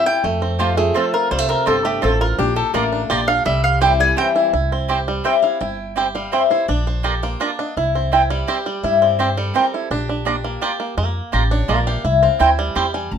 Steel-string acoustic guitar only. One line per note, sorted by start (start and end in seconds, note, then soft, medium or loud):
0.05 0.24 C4 soft
0.05 0.23 E4 medium
0.24 0.92 F2 medium
0.59 0.77 F3 medium
0.59 0.77 A3 medium
0.59 0.77 C4 medium
0.59 0.76 F4 medium
0.77 0.95 C4 medium
0.77 0.94 F4 medium
0.95 1.13 F3 medium
0.95 1.13 A3 medium
0.95 1.13 C4 medium
0.95 1.11 F4 medium
1.13 1.31 C4 soft
1.13 1.30 F4 medium
1.31 1.99 C3 medium
1.67 2.01 G2 medium
2.03 2.37 A2 medium
2.39 3.07 A#2 medium
2.75 3.09 A3 medium
3.11 3.44 A#2 medium
3.46 4.14 C3 medium
3.82 3.99 E3 medium
3.82 4.00 G3 medium
3.82 4.00 C4 loud
3.82 3.99 E4 loud
4.00 4.17 C4 soft
4.00 4.17 E4 medium
4.17 4.52 E3 medium
4.17 4.52 G3 medium
4.17 4.52 C4 medium
4.17 4.52 E4 medium
5.25 5.42 E5 medium
5.42 5.60 F5 medium
5.61 6.11 G5 loud
6.15 6.32 F5 medium
6.32 6.50 E5 medium
6.50 6.68 C5 medium
6.68 6.87 D5 loud
6.87 7.04 C5 medium
7.05 7.23 A4 medium
7.23 7.41 C5 medium
7.41 7.58 D5 medium
7.59 7.77 D#5 medium
7.77 8.30 E5 loud
8.30 8.49 D5 medium
8.49 8.66 C5 medium
8.66 8.83 D5 medium
8.83 9.01 E5 medium
9.02 9.19 D5 medium
9.20 9.37 C5 medium
9.37 9.54 A4 medium
9.56 9.73 A#4 medium
9.73 9.90 A4 medium
9.91 10.94 G4 medium
11.51 11.69 C#5 loud
11.69 11.87 D5 medium
11.87 12.04 F5 loud
12.05 12.22 E5 medium
12.23 12.40 F5 medium
12.41 12.58 G5 medium
12.58 12.75 G#5 loud
12.76 12.93 G5 medium
12.94 13.11 G#5 medium
13.11 13.18 A5 loud